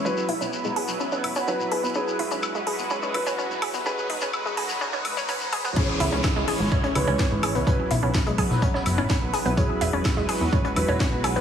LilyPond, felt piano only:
\new Staff \with { instrumentName = "Felt piano" } { \time 4/4 \key cis \minor \tempo 4 = 126 <fis e' b'>8 r2 r8 <fis e' b'>8 <fis e' b'>8 | <fis e' gis'>2~ <fis e' gis'>8 <fis e' b'>4. | <gis fis' b'>8 r2. r8 | <e cis' gis'>2~ <e cis' gis'>8 <e cis' b'>4. |
<fis e' b'>8 r2. r8 | <fis e' gis'>2~ <fis e' gis'>8 <fis e' b'>4. | }